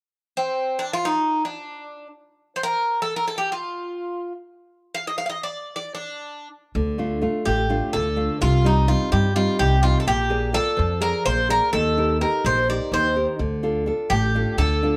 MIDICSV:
0, 0, Header, 1, 4, 480
1, 0, Start_track
1, 0, Tempo, 474684
1, 102, Time_signature, 7, 3, 24, 8
1, 15136, End_track
2, 0, Start_track
2, 0, Title_t, "Bouzouki"
2, 0, Program_c, 0, 25
2, 374, Note_on_c, 0, 60, 69
2, 798, Note_on_c, 0, 62, 70
2, 810, Note_off_c, 0, 60, 0
2, 941, Note_off_c, 0, 62, 0
2, 945, Note_on_c, 0, 65, 86
2, 1064, Note_on_c, 0, 63, 77
2, 1078, Note_off_c, 0, 65, 0
2, 1461, Note_off_c, 0, 63, 0
2, 1465, Note_on_c, 0, 62, 59
2, 2090, Note_off_c, 0, 62, 0
2, 2588, Note_on_c, 0, 72, 58
2, 2659, Note_off_c, 0, 72, 0
2, 2663, Note_on_c, 0, 70, 82
2, 3050, Note_off_c, 0, 70, 0
2, 3054, Note_on_c, 0, 69, 78
2, 3195, Note_off_c, 0, 69, 0
2, 3199, Note_on_c, 0, 70, 68
2, 3294, Note_off_c, 0, 70, 0
2, 3312, Note_on_c, 0, 69, 67
2, 3414, Note_off_c, 0, 69, 0
2, 3416, Note_on_c, 0, 67, 69
2, 3548, Note_off_c, 0, 67, 0
2, 3560, Note_on_c, 0, 65, 65
2, 4369, Note_off_c, 0, 65, 0
2, 5001, Note_on_c, 0, 77, 83
2, 5127, Note_off_c, 0, 77, 0
2, 5131, Note_on_c, 0, 75, 75
2, 5232, Note_off_c, 0, 75, 0
2, 5236, Note_on_c, 0, 77, 75
2, 5305, Note_off_c, 0, 77, 0
2, 5317, Note_on_c, 0, 77, 53
2, 5350, Note_off_c, 0, 77, 0
2, 5355, Note_on_c, 0, 75, 68
2, 5486, Note_off_c, 0, 75, 0
2, 5495, Note_on_c, 0, 74, 72
2, 5812, Note_off_c, 0, 74, 0
2, 5824, Note_on_c, 0, 74, 74
2, 6009, Note_off_c, 0, 74, 0
2, 6013, Note_on_c, 0, 62, 61
2, 6549, Note_off_c, 0, 62, 0
2, 7538, Note_on_c, 0, 67, 69
2, 7989, Note_off_c, 0, 67, 0
2, 8020, Note_on_c, 0, 69, 75
2, 8507, Note_off_c, 0, 69, 0
2, 8511, Note_on_c, 0, 65, 82
2, 8756, Note_off_c, 0, 65, 0
2, 8760, Note_on_c, 0, 63, 66
2, 8977, Note_off_c, 0, 63, 0
2, 8981, Note_on_c, 0, 65, 71
2, 9207, Note_off_c, 0, 65, 0
2, 9222, Note_on_c, 0, 67, 74
2, 9459, Note_off_c, 0, 67, 0
2, 9463, Note_on_c, 0, 65, 75
2, 9687, Note_off_c, 0, 65, 0
2, 9700, Note_on_c, 0, 67, 81
2, 9934, Note_off_c, 0, 67, 0
2, 9938, Note_on_c, 0, 65, 79
2, 10098, Note_off_c, 0, 65, 0
2, 10111, Note_on_c, 0, 69, 67
2, 10184, Note_off_c, 0, 69, 0
2, 10190, Note_on_c, 0, 67, 88
2, 10658, Note_off_c, 0, 67, 0
2, 10662, Note_on_c, 0, 69, 90
2, 11109, Note_off_c, 0, 69, 0
2, 11139, Note_on_c, 0, 70, 86
2, 11378, Note_off_c, 0, 70, 0
2, 11382, Note_on_c, 0, 72, 91
2, 11605, Note_off_c, 0, 72, 0
2, 11633, Note_on_c, 0, 70, 92
2, 11855, Note_off_c, 0, 70, 0
2, 11859, Note_on_c, 0, 69, 89
2, 12307, Note_off_c, 0, 69, 0
2, 12350, Note_on_c, 0, 70, 76
2, 12593, Note_off_c, 0, 70, 0
2, 12599, Note_on_c, 0, 72, 87
2, 12835, Note_off_c, 0, 72, 0
2, 12839, Note_on_c, 0, 74, 81
2, 13054, Note_off_c, 0, 74, 0
2, 13081, Note_on_c, 0, 72, 85
2, 13406, Note_off_c, 0, 72, 0
2, 14256, Note_on_c, 0, 67, 82
2, 14742, Note_off_c, 0, 67, 0
2, 14746, Note_on_c, 0, 69, 91
2, 15136, Note_off_c, 0, 69, 0
2, 15136, End_track
3, 0, Start_track
3, 0, Title_t, "Nylon-string guitar"
3, 0, Program_c, 1, 24
3, 6826, Note_on_c, 1, 50, 56
3, 7060, Note_on_c, 1, 57, 48
3, 7065, Note_on_c, 1, 62, 39
3, 7069, Note_on_c, 1, 65, 46
3, 7285, Note_off_c, 1, 62, 0
3, 7286, Note_off_c, 1, 57, 0
3, 7287, Note_off_c, 1, 65, 0
3, 7293, Note_off_c, 1, 50, 0
3, 7296, Note_on_c, 1, 57, 43
3, 7299, Note_on_c, 1, 62, 37
3, 7305, Note_on_c, 1, 65, 45
3, 7528, Note_off_c, 1, 57, 0
3, 7540, Note_on_c, 1, 57, 66
3, 7685, Note_off_c, 1, 62, 0
3, 7687, Note_off_c, 1, 65, 0
3, 7770, Note_off_c, 1, 57, 0
3, 7781, Note_on_c, 1, 57, 44
3, 7786, Note_on_c, 1, 62, 45
3, 7787, Note_on_c, 1, 65, 55
3, 8024, Note_on_c, 1, 50, 64
3, 8168, Note_off_c, 1, 57, 0
3, 8169, Note_off_c, 1, 62, 0
3, 8171, Note_off_c, 1, 65, 0
3, 8253, Note_on_c, 1, 57, 42
3, 8258, Note_on_c, 1, 62, 41
3, 8260, Note_on_c, 1, 65, 49
3, 8451, Note_off_c, 1, 57, 0
3, 8453, Note_off_c, 1, 62, 0
3, 8455, Note_off_c, 1, 65, 0
3, 8491, Note_off_c, 1, 50, 0
3, 8503, Note_on_c, 1, 48, 57
3, 8739, Note_on_c, 1, 55, 50
3, 8744, Note_on_c, 1, 60, 44
3, 8750, Note_on_c, 1, 63, 55
3, 8970, Note_off_c, 1, 48, 0
3, 8975, Note_off_c, 1, 55, 0
3, 8977, Note_off_c, 1, 60, 0
3, 8983, Note_off_c, 1, 63, 0
3, 8987, Note_on_c, 1, 55, 43
3, 8990, Note_on_c, 1, 60, 40
3, 8995, Note_on_c, 1, 63, 48
3, 9209, Note_off_c, 1, 55, 0
3, 9221, Note_on_c, 1, 55, 65
3, 9371, Note_off_c, 1, 60, 0
3, 9376, Note_off_c, 1, 63, 0
3, 9448, Note_off_c, 1, 55, 0
3, 9459, Note_on_c, 1, 55, 50
3, 9464, Note_on_c, 1, 60, 45
3, 9465, Note_on_c, 1, 63, 55
3, 9705, Note_on_c, 1, 48, 66
3, 9846, Note_off_c, 1, 55, 0
3, 9848, Note_off_c, 1, 60, 0
3, 9848, Note_off_c, 1, 63, 0
3, 9941, Note_on_c, 1, 55, 42
3, 9942, Note_on_c, 1, 60, 43
3, 9947, Note_on_c, 1, 63, 48
3, 10134, Note_off_c, 1, 60, 0
3, 10135, Note_off_c, 1, 55, 0
3, 10138, Note_off_c, 1, 63, 0
3, 10170, Note_off_c, 1, 48, 0
3, 10180, Note_on_c, 1, 58, 56
3, 10410, Note_on_c, 1, 68, 51
3, 10418, Note_on_c, 1, 70, 40
3, 10423, Note_on_c, 1, 74, 54
3, 10643, Note_off_c, 1, 68, 0
3, 10644, Note_off_c, 1, 58, 0
3, 10645, Note_off_c, 1, 74, 0
3, 10647, Note_on_c, 1, 65, 45
3, 10656, Note_on_c, 1, 58, 41
3, 10661, Note_on_c, 1, 74, 52
3, 10804, Note_off_c, 1, 70, 0
3, 10888, Note_on_c, 1, 53, 59
3, 11037, Note_off_c, 1, 65, 0
3, 11043, Note_off_c, 1, 58, 0
3, 11044, Note_off_c, 1, 74, 0
3, 11128, Note_on_c, 1, 68, 48
3, 11134, Note_on_c, 1, 70, 44
3, 11139, Note_on_c, 1, 74, 52
3, 11361, Note_off_c, 1, 53, 0
3, 11379, Note_on_c, 1, 58, 65
3, 11518, Note_off_c, 1, 68, 0
3, 11521, Note_off_c, 1, 70, 0
3, 11524, Note_off_c, 1, 74, 0
3, 11616, Note_on_c, 1, 68, 44
3, 11622, Note_on_c, 1, 70, 44
3, 11627, Note_on_c, 1, 74, 51
3, 11811, Note_off_c, 1, 68, 0
3, 11814, Note_off_c, 1, 70, 0
3, 11817, Note_off_c, 1, 74, 0
3, 11846, Note_off_c, 1, 58, 0
3, 11866, Note_on_c, 1, 51, 60
3, 12108, Note_on_c, 1, 63, 46
3, 12114, Note_on_c, 1, 67, 43
3, 12115, Note_on_c, 1, 70, 51
3, 12329, Note_off_c, 1, 51, 0
3, 12333, Note_off_c, 1, 63, 0
3, 12338, Note_off_c, 1, 67, 0
3, 12340, Note_off_c, 1, 70, 0
3, 12345, Note_on_c, 1, 63, 47
3, 12350, Note_on_c, 1, 67, 38
3, 12353, Note_on_c, 1, 70, 47
3, 12595, Note_on_c, 1, 58, 66
3, 12727, Note_off_c, 1, 63, 0
3, 12730, Note_off_c, 1, 67, 0
3, 12732, Note_off_c, 1, 70, 0
3, 12827, Note_on_c, 1, 63, 45
3, 12835, Note_on_c, 1, 67, 47
3, 12840, Note_on_c, 1, 70, 51
3, 13054, Note_off_c, 1, 58, 0
3, 13077, Note_on_c, 1, 51, 61
3, 13208, Note_off_c, 1, 63, 0
3, 13213, Note_off_c, 1, 67, 0
3, 13215, Note_off_c, 1, 70, 0
3, 13303, Note_on_c, 1, 63, 45
3, 13307, Note_on_c, 1, 67, 41
3, 13311, Note_on_c, 1, 70, 43
3, 13494, Note_off_c, 1, 63, 0
3, 13496, Note_off_c, 1, 67, 0
3, 13498, Note_off_c, 1, 70, 0
3, 13534, Note_off_c, 1, 51, 0
3, 13542, Note_on_c, 1, 50, 55
3, 13782, Note_on_c, 1, 62, 42
3, 13785, Note_on_c, 1, 65, 39
3, 13789, Note_on_c, 1, 69, 50
3, 14004, Note_off_c, 1, 62, 0
3, 14007, Note_off_c, 1, 50, 0
3, 14013, Note_off_c, 1, 65, 0
3, 14015, Note_off_c, 1, 69, 0
3, 14017, Note_on_c, 1, 62, 42
3, 14024, Note_on_c, 1, 65, 40
3, 14029, Note_on_c, 1, 69, 51
3, 14274, Note_on_c, 1, 57, 62
3, 14402, Note_off_c, 1, 62, 0
3, 14407, Note_off_c, 1, 65, 0
3, 14408, Note_off_c, 1, 69, 0
3, 14506, Note_on_c, 1, 62, 50
3, 14515, Note_on_c, 1, 65, 43
3, 14519, Note_on_c, 1, 69, 55
3, 14732, Note_off_c, 1, 57, 0
3, 14752, Note_on_c, 1, 50, 65
3, 14887, Note_off_c, 1, 62, 0
3, 14892, Note_off_c, 1, 65, 0
3, 14895, Note_off_c, 1, 69, 0
3, 14993, Note_on_c, 1, 62, 43
3, 14997, Note_on_c, 1, 65, 39
3, 15002, Note_on_c, 1, 69, 44
3, 15136, Note_off_c, 1, 50, 0
3, 15136, Note_off_c, 1, 62, 0
3, 15136, Note_off_c, 1, 65, 0
3, 15136, Note_off_c, 1, 69, 0
3, 15136, End_track
4, 0, Start_track
4, 0, Title_t, "Upright bass"
4, 0, Program_c, 2, 32
4, 6825, Note_on_c, 2, 38, 93
4, 7330, Note_off_c, 2, 38, 0
4, 7551, Note_on_c, 2, 33, 81
4, 7886, Note_off_c, 2, 33, 0
4, 8030, Note_on_c, 2, 38, 81
4, 8365, Note_off_c, 2, 38, 0
4, 8509, Note_on_c, 2, 36, 96
4, 9012, Note_off_c, 2, 36, 0
4, 9230, Note_on_c, 2, 43, 99
4, 9564, Note_off_c, 2, 43, 0
4, 9708, Note_on_c, 2, 36, 79
4, 10043, Note_off_c, 2, 36, 0
4, 10187, Note_on_c, 2, 34, 91
4, 10690, Note_off_c, 2, 34, 0
4, 10910, Note_on_c, 2, 41, 92
4, 11243, Note_off_c, 2, 41, 0
4, 11385, Note_on_c, 2, 34, 80
4, 11720, Note_off_c, 2, 34, 0
4, 11863, Note_on_c, 2, 39, 94
4, 12366, Note_off_c, 2, 39, 0
4, 12584, Note_on_c, 2, 34, 92
4, 12919, Note_off_c, 2, 34, 0
4, 13061, Note_on_c, 2, 39, 78
4, 13396, Note_off_c, 2, 39, 0
4, 13543, Note_on_c, 2, 38, 90
4, 14046, Note_off_c, 2, 38, 0
4, 14260, Note_on_c, 2, 33, 91
4, 14595, Note_off_c, 2, 33, 0
4, 14739, Note_on_c, 2, 38, 85
4, 15075, Note_off_c, 2, 38, 0
4, 15136, End_track
0, 0, End_of_file